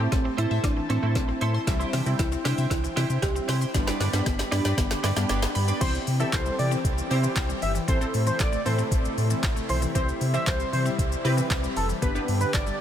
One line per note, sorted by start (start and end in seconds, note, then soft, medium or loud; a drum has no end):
0.00 0.80 A3 medium
0.00 0.80 C4 medium
0.00 3.71 E4 medium
0.00 0.80 G4 medium
0.00 1.64 C5 medium
0.00 1.65 A5 medium
0.12 0.29 A1 loud
0.12 0.20 E3 medium
0.12 0.39 C4 medium
0.12 muted clean electric guitar stroke soft
0.12 kick loud
0.12 snare medium
0.12 closed hi-hat medium
0.25 0.33 C4 medium
0.25 muted clean electric guitar stroke soft
0.37 0.46 A2 medium
0.37 0.51 C4 medium
0.37 0.50 E4 medium
0.37 0.62 E4 loud
0.37 0.50 A4 medium
0.37 0.49 C5 medium
0.37 closed hi-hat medium
0.50 0.59 A2 loud
0.50 0.62 C4 soft
0.50 0.63 E4 medium
0.50 0.63 A4 medium
0.50 0.63 C5 medium
0.50 0.59 E5 medium
0.63 0.81 A1 loud
0.63 0.72 E3 medium
0.63 0.91 D4 loud
0.63 muted clean electric guitar stroke soft
0.63 kick loud
0.63 snare medium
0.63 closed hi-hat medium
0.77 0.85 E3 medium
0.77 muted clean electric guitar stroke soft
0.89 0.98 A2 loud
0.89 0.98 E3 medium
0.89 1.02 C4 medium
0.89 1.02 E4 medium
0.89 1.02 A4 medium
0.89 1.01 C5 loud
0.89 closed hi-hat medium
1.02 1.17 A2 loud
1.02 1.53 A3 medium
1.02 1.53 C4 medium
1.02 1.14 C4 medium
1.02 1.53 E4 medium
1.02 1.14 E4 soft
1.02 1.15 A4 medium
1.02 1.15 C5 medium
1.15 1.32 A1 loud
1.15 1.52 C4 medium
1.15 muted clean electric guitar stroke soft
1.15 kick loud
1.15 snare medium
1.15 closed hi-hat medium
1.28 1.36 C4 medium
1.28 muted clean electric guitar stroke soft
1.41 1.58 A2 loud
1.41 1.54 C4 medium
1.41 1.54 E4 medium
1.41 1.53 A4 loud
1.41 1.52 C5 loud
1.41 1.49 C6 loud
1.41 closed hi-hat medium
1.54 1.66 C4 medium
1.54 1.66 E4 medium
1.54 1.67 A4 medium
1.54 1.67 C5 medium
1.54 1.62 C6 medium
1.67 1.84 C2 loud
1.67 1.75 E3 loud
1.67 1.98 G3 medium
1.67 1.98 C4 medium
1.67 1.98 E4 loud
1.67 3.72 C5 medium
1.67 3.72 G5 medium
1.67 muted clean electric guitar stroke soft
1.67 kick loud
1.67 snare medium
1.67 closed hi-hat medium
1.67 shaker medium
1.80 1.91 C4 medium
1.80 1.92 E4 medium
1.80 1.92 G4 medium
1.80 1.93 C5 medium
1.80 shaker soft
1.93 2.02 C3 loud
1.93 2.01 E3 medium
1.93 2.08 C4 medium
1.93 2.06 E4 medium
1.93 2.05 G4 medium
1.93 2.05 C5 medium
1.93 snare medium
1.93 open hi-hat medium
1.93 shaker medium
2.06 2.15 C3 loud
2.06 2.87 G3 medium
2.06 2.87 C4 medium
2.06 2.87 E4 medium
2.06 muted clean electric guitar stroke soft
2.06 shaker medium
2.19 2.36 C2 loud
2.19 2.27 E3 medium
2.19 2.46 E4 medium
2.19 muted clean electric guitar stroke medium
2.19 kick loud
2.19 snare medium
2.19 closed hi-hat medium
2.19 shaker medium
2.32 2.40 C4 medium
2.32 muted clean electric guitar stroke soft
2.32 shaker medium
2.45 2.54 C3 loud
2.45 2.58 C4 medium
2.45 2.72 D4 medium
2.45 2.58 E4 medium
2.45 2.57 G4 medium
2.45 2.57 C5 loud
2.45 snare medium
2.45 open hi-hat medium
2.45 shaker medium
2.58 2.66 C3 loud
2.58 2.70 C4 soft
2.58 2.70 E4 medium
2.58 2.70 G4 medium
2.58 2.71 C5 medium
2.58 2.66 E5 medium
2.58 shaker medium
2.70 2.88 C2 loud
2.70 2.79 E3 medium
2.70 2.95 E4 loud
2.70 muted clean electric guitar stroke soft
2.70 kick loud
2.70 snare loud
2.70 closed hi-hat medium
2.70 shaker medium
2.84 2.92 E3 medium
2.84 muted clean electric guitar stroke medium
2.84 shaker medium
2.96 3.05 C3 loud
2.96 3.04 E3 medium
2.96 3.10 C4 medium
2.96 3.08 E4 loud
2.96 3.09 E4 loud
2.96 3.09 G4 loud
2.96 3.08 C5 loud
2.96 snare loud
2.96 open hi-hat medium
2.96 shaker medium
3.09 3.18 C3 loud
3.09 3.21 C4 soft
3.09 3.21 E4 medium
3.09 3.22 G4 medium
3.09 3.22 C5 medium
3.09 shaker medium
3.22 3.40 C2 loud
3.22 3.63 G3 medium
3.22 3.63 C4 medium
3.22 3.63 E4 medium
3.22 3.59 G4 loud
3.22 muted clean electric guitar stroke medium
3.22 kick loud
3.22 snare medium
3.22 closed hi-hat medium
3.22 shaker medium
3.35 3.43 C4 medium
3.35 muted clean electric guitar stroke soft
3.35 shaker medium
3.48 3.65 C3 medium
3.48 3.61 C4 medium
3.48 3.61 E4 loud
3.48 3.60 G4 loud
3.48 3.60 C5 loud
3.48 3.56 C6 medium
3.48 snare loud
3.48 open hi-hat medium
3.48 shaker medium
3.61 3.74 C4 medium
3.61 3.74 E4 medium
3.61 3.74 G4 medium
3.61 3.75 C5 medium
3.61 3.69 C6 medium
3.61 shaker medium
3.74 3.91 G1 loud
3.74 3.82 D3 loud
3.74 4.05 G3 medium
3.74 4.05 B3 medium
3.74 4.05 D4 loud
3.74 5.79 G4 medium
3.74 5.79 D5 medium
3.74 5.79 B5 medium
3.74 muted clean electric guitar stroke medium
3.74 kick loud
3.74 snare loud
3.74 closed hi-hat medium
3.74 shaker medium
3.87 3.99 B3 medium
3.87 3.99 D4 medium
3.87 4.00 G4 medium
3.87 4.00 B4 medium
3.87 snare loud
3.87 shaker medium
4.00 4.09 G2 loud
4.00 4.08 D3 medium
4.00 4.15 B3 medium
4.00 4.13 D4 medium
4.00 4.12 G4 medium
4.00 4.12 B4 medium
4.00 snare loud
4.00 open hi-hat medium
4.00 shaker medium
4.13 4.22 G2 loud
4.13 4.94 G3 medium
4.13 4.94 B3 medium
4.13 4.94 D4 medium
4.13 muted clean electric guitar stroke soft
4.13 snare loud
4.13 shaker medium
4.26 4.43 G1 loud
4.26 4.34 D3 medium
4.26 4.53 B3 loud
4.26 muted clean electric guitar stroke soft
4.26 kick loud
4.26 snare loud
4.26 closed hi-hat medium
4.26 shaker medium
4.39 4.47 B3 medium
4.39 muted clean electric guitar stroke soft
4.39 snare loud
4.39 shaker medium
4.51 4.60 G2 loud
4.51 4.65 B3 medium
4.51 4.63 D4 loud
4.51 4.64 D4 medium
4.51 4.64 G4 medium
4.51 4.63 B4 medium
4.51 snare loud
4.51 open hi-hat medium
4.51 shaker medium
4.64 4.73 G2 loud
4.64 4.76 B3 medium
4.64 4.77 D4 medium
4.64 4.77 G4 medium
4.64 4.77 B4 medium
4.64 4.72 D5 medium
4.64 snare loud
4.64 shaker medium
4.77 4.95 G1 loud
4.77 4.85 D3 medium
4.77 5.51 B3 medium
4.77 muted clean electric guitar stroke soft
4.77 kick loud
4.77 snare loud
4.77 closed hi-hat medium
4.77 shaker medium
4.90 4.98 D3 medium
4.90 muted clean electric guitar stroke soft
4.90 snare loud
4.90 shaker medium
5.03 5.12 G2 loud
5.03 5.11 D3 medium
5.03 5.16 B3 medium
5.03 5.16 D4 medium
5.03 5.15 G4 loud
5.03 5.15 B4 loud
5.03 snare loud
5.03 open hi-hat medium
5.03 shaker medium
5.16 5.25 G2 medium
5.16 5.67 G3 medium
5.16 5.67 B3 medium
5.16 5.28 B3 medium
5.16 5.67 D4 medium
5.16 5.28 D4 medium
5.16 5.29 G4 medium
5.16 5.29 B4 medium
5.16 snare loud
5.16 shaker medium
5.29 5.46 G1 loud
5.29 5.49 B3 medium
5.29 5.42 D4 medium
5.29 5.41 G4 medium
5.29 5.41 B4 medium
5.29 snare loud
5.29 closed hi-hat medium
5.29 shaker medium
5.42 5.50 B3 medium
5.42 muted clean electric guitar stroke soft
5.42 snare loud
5.42 shaker medium
5.55 5.72 G2 loud
5.55 5.63 B5 loud
5.55 muted clean electric guitar stroke soft
5.55 open hi-hat medium
5.55 shaker medium
5.68 5.84 B3 soft
5.68 5.84 D4 medium
5.68 5.84 G4 medium
5.68 5.84 B4 medium
5.68 5.76 B5 medium
5.68 shaker medium
5.81 5.98 C2 loud
5.81 5.89 E3 loud
5.81 7.86 E3 medium
5.81 6.11 C4 medium
5.81 7.86 C4 medium
5.81 6.12 E4 medium
5.81 6.12 G4 medium
5.81 7.86 G4 medium
5.81 5.92 C5 loud
5.81 6.12 C5 medium
5.81 kick loud
5.81 closed hi-hat medium
5.81 crash loud
5.81 shaker medium
5.95 shaker medium
6.07 6.24 C3 loud
6.07 open hi-hat medium
6.07 shaker medium
6.20 6.28 E3 medium
6.20 6.91 C4 medium
6.20 6.91 E4 medium
6.20 6.91 G4 medium
6.20 6.91 A4 medium
6.20 6.31 E5 medium
6.20 shaker medium
6.33 6.50 C2 loud
6.33 6.41 E3 medium
6.33 6.54 C5 medium
6.33 kick loud
6.33 snare medium
6.33 clap loud
6.33 closed hi-hat medium
6.33 shaker medium
6.46 6.54 G3 medium
6.46 shaker medium
6.59 6.76 C3 loud
6.59 6.66 E3 medium
6.59 6.70 D5 medium
6.59 open hi-hat medium
6.59 shaker medium
6.71 6.79 C4 medium
6.71 shaker medium
6.84 7.01 C2 loud
6.84 kick loud
6.84 closed hi-hat medium
6.84 shaker medium
6.98 shaker medium
7.10 7.28 C3 loud
7.10 7.71 C4 medium
7.10 7.71 E4 medium
7.10 7.71 G4 medium
7.10 7.71 C5 loud
7.10 open hi-hat medium
7.10 shaker medium
7.23 7.31 E3 medium
7.23 shaker medium
7.36 7.53 C2 loud
7.36 kick loud
7.36 snare medium
7.36 clap loud
7.36 closed hi-hat medium
7.36 shaker medium
7.49 7.57 G3 medium
7.49 shaker medium
7.62 7.79 G1 medium
7.62 7.70 E3 medium
7.62 7.73 E5 medium
7.62 open hi-hat medium
7.62 shaker medium
7.75 7.83 E3 medium
7.75 shaker medium
7.88 8.05 A1 loud
7.88 11.98 C3 medium
7.88 7.96 E3 loud
7.88 9.93 A3 medium
7.88 7.98 C4 medium
7.88 7.98 E4 medium
7.88 11.98 E4 medium
7.88 7.98 A4 medium
7.88 7.99 C5 loud
7.88 7.98 C5 medium
7.88 kick loud
7.88 closed hi-hat medium
7.88 shaker medium
8.01 8.52 C4 medium
8.01 8.52 E4 medium
8.01 8.52 A4 medium
8.01 8.52 C5 medium
8.01 shaker medium
8.14 8.31 A2 loud
8.14 open hi-hat medium
8.14 shaker medium
8.27 8.34 E3 medium
8.27 8.38 C5 medium
8.27 shaker medium
8.40 8.57 A1 loud
8.40 8.47 E3 medium
8.40 8.61 D5 medium
8.40 kick loud
8.40 snare medium
8.40 clap loud
8.40 closed hi-hat medium
8.40 shaker medium
8.53 8.60 A3 medium
8.53 shaker medium
8.65 8.83 A2 medium
8.65 8.73 E3 medium
8.65 9.47 C4 medium
8.65 9.47 E4 medium
8.65 9.47 A4 medium
8.65 8.76 C5 medium
8.65 9.47 C5 medium
8.65 open hi-hat medium
8.65 shaker medium
8.78 8.86 C4 medium
8.78 shaker medium
8.91 9.08 A1 loud
8.91 kick loud
8.91 closed hi-hat medium
8.91 shaker medium
9.05 shaker medium
9.18 9.34 A2 loud
9.18 open hi-hat medium
9.18 shaker medium
9.30 9.38 E3 medium
9.30 shaker medium
9.43 9.60 A1 medium
9.43 kick loud
9.43 snare medium
9.43 clap loud
9.43 closed hi-hat medium
9.43 shaker medium
9.56 9.64 A3 medium
9.56 shaker medium
9.69 9.86 B1 medium
9.69 9.77 E3 medium
9.69 9.80 C5 medium
9.69 open hi-hat medium
9.69 shaker medium
9.82 9.90 E3 medium
9.82 shaker medium
9.95 10.12 C2 loud
9.95 10.03 E3 loud
9.95 12.00 G3 medium
9.95 10.25 C4 medium
9.95 10.26 E4 medium
9.95 10.26 G4 medium
9.95 10.06 C5 loud
9.95 10.26 C5 medium
9.95 kick loud
9.95 closed hi-hat medium
9.95 shaker medium
10.09 shaker medium
10.21 10.38 C3 loud
10.21 open hi-hat medium
10.21 shaker medium
10.34 10.42 E3 medium
10.34 11.05 C4 medium
10.34 11.05 E4 medium
10.34 11.05 G4 medium
10.34 11.05 C5 medium
10.34 10.45 E5 medium
10.34 shaker medium
10.47 10.64 C2 loud
10.47 10.55 E3 medium
10.47 10.68 C5 medium
10.47 kick loud
10.47 snare medium
10.47 clap loud
10.47 closed hi-hat medium
10.47 shaker medium
10.60 10.67 G3 medium
10.60 shaker soft
10.73 10.90 C3 loud
10.73 10.80 E3 medium
10.73 10.84 C5 medium
10.73 open hi-hat medium
10.73 shaker medium
10.86 10.93 C4 medium
10.86 shaker medium
10.99 11.15 C2 loud
10.99 kick loud
10.99 closed hi-hat medium
10.99 shaker medium
11.12 shaker medium
11.24 11.41 C3 loud
11.24 11.85 C4 loud
11.24 11.85 E4 medium
11.24 11.85 G4 medium
11.24 11.85 B4 loud
11.24 open hi-hat medium
11.24 shaker medium
11.37 11.45 E3 medium
11.37 shaker medium
11.50 11.67 C2 loud
11.50 kick loud
11.50 snare medium
11.50 clap loud
11.50 closed hi-hat medium
11.50 shaker medium
11.63 11.71 G3 medium
11.63 shaker medium
11.76 11.93 F1 loud
11.76 11.84 E3 medium
11.76 11.87 A4 medium
11.76 open hi-hat medium
11.76 shaker medium
11.89 11.97 E3 medium
11.89 shaker medium
12.02 12.19 G1 loud
12.02 12.10 D3 loud
12.02 12.81 D3 medium
12.02 12.12 B3 medium
12.02 12.81 B3 medium
12.02 12.12 D4 medium
12.02 12.81 G4 medium
12.02 12.12 G4 medium
12.02 12.12 B4 medium
12.02 12.13 B4 medium
12.02 kick loud
12.02 closed hi-hat medium
12.02 shaker medium
12.15 12.65 B3 medium
12.15 12.66 D4 medium
12.15 12.66 G4 medium
12.15 12.66 B4 medium
12.15 shaker medium
12.28 12.45 G2 loud
12.28 open hi-hat medium
12.28 shaker medium
12.41 12.49 D3 medium
12.41 12.52 B4 medium
12.41 shaker medium
12.54 12.71 G1 loud
12.54 12.62 D3 medium
12.54 12.75 D5 medium
12.54 kick loud
12.54 snare medium
12.54 clap loud
12.54 closed hi-hat medium
12.54 shaker medium
12.67 12.74 G3 medium
12.67 shaker medium